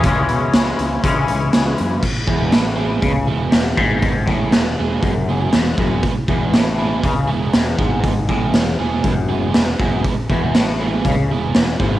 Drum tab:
CC |--------|x-------|--------|--------|
HH |xxxxxxxx|--o-o-o-|o-o-o-o-|o-o-o-o-|
SD |--o---o-|--o---o-|--o---o-|--o---o-|
BD |o---o---|oo--o--o|oo--o--o|oo--o--o|

CC |--------|--------|
HH |o-o-o-o-|o-o-o-o-|
SD |--o---o-|--o---o-|
BD |oo--o--o|oo--o--o|